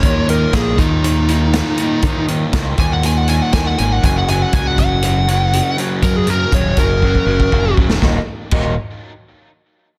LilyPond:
<<
  \new Staff \with { instrumentName = "Lead electric guitar" } { \time 4/4 \key ees \minor \tempo 4 = 120 des''8 bes'8 aes'8 ees'2~ ees'8~ | ees'8 r4 aes''16 ges''16 aes''16 ges''16 aes''16 ges''16 aes''16 ges''16 aes''16 ges''16 | aes''16 ges''16 aes''16 ges''16 aes''16 ges''16 ges''2 r8 | bes'16 aes'16 bes'8 des''8 bes'2 r8 |
r1 | }
  \new Staff \with { instrumentName = "Clean electric guitar" } { \clef bass \time 4/4 \key ees \minor <ees, bes, ees>8 <ees, bes, ees>8 <ees, bes, ees>8 <ees, bes, ees>8 <ees, bes, ees>8 <ees, bes, ees>8 <ees, bes, ees>8 <ees, bes, ees>8 | <bes, ees>8 <ees, bes, ees>8 <ees, bes, ees>8 <ees, bes, ees>8 <ees, bes, ees>8 <ees, bes, ees>8 <ees, bes, ees>8 <ees, bes, ees>8 | <ges, des ges>8 <ges, des ges>8 <ges, des ges>8 <ges, des ges>8 <ges, des ges>8 <ges, des ges>8 <ges, des ges>8 <ges, des ges>8 | <ges, des ges>8 <ges, des ges>8 <ges, des ges>8 <ges, des ges>8 <ges, des ges>8 <ges, des ges>8 <ges, des ges>8 <ges, des ges>8 |
<ees, bes, ees ges bes ees'>8 r8 <ees, bes, ees ges bes ees'>8 r2 r8 | }
  \new Staff \with { instrumentName = "Overdriven electric guitar" } { \clef bass \time 4/4 \key ees \minor <ees, bes, ees>8 <ees, bes, ees>8 <ees, bes, ees>8 <ees, bes, ees>8 <ees, bes, ees>8 <ees, bes, ees>8 <ees, bes, ees>8 <ees, bes, ees>8 | <ees, bes, ees>8 <ees, bes, ees>8 <ees, bes, ees>8 <ees, bes, ees>8 <ees, bes, ees>8 <ees, bes, ees>8 <ees, bes, ees>8 <ees, bes, ees>8 | <ges, des ges>8 <ges, des ges>8 <ges, des ges>8 <ges, des ges>8 <ges, des ges>8 <ges, des ges>8 <ges, des ges>8 <ges, des ges>8 | <ges, des ges>8 <ges, des ges>8 <ges, des ges>8 <ges, des ges>8 <ges, des ges>8 <ges, des ges>8 <ges, des ges>8 <ges, des ges>8 |
<ees, bes, ees ges bes ees'>8 r8 <ees, bes, ees ges bes ees'>8 r2 r8 | }
  \new Staff \with { instrumentName = "Fingered electric bass" } { \clef bass \time 4/4 \key ees \minor ees,4 bes,,8 ees,2 r8 | ees4 des,8 ees,4. ees,8 aes,,8 | ges,,4 des,8 ges,,2 r8 | ges,4 ees,,8 ges,,4 ges,,8 f,,8 ees,,8 |
ees,,8 r8 ees,,8 r2 r8 | }
  \new DrumStaff \with { instrumentName = "Drums" } \drummode { \time 4/4 <hh bd>8 hh8 <hh bd sn>8 <hh bd>8 hh8 hh8 <hh sn>8 hh8 | <hh bd>8 hh8 <hh bd sn>8 <hh bd>8 hh8 hh8 <hh bd sn>8 hh8 | <hh bd>8 hh8 <hh bd>8 <hh bd>8 hh8 hh8 hh8 hh8 | <hh bd>8 hh8 <hh bd>8 <hh bd>8 bd16 bd8 bd16 bd8 bd16 sn16 |
<bd sn>4 <cymc bd>4 r4 r4 | }
>>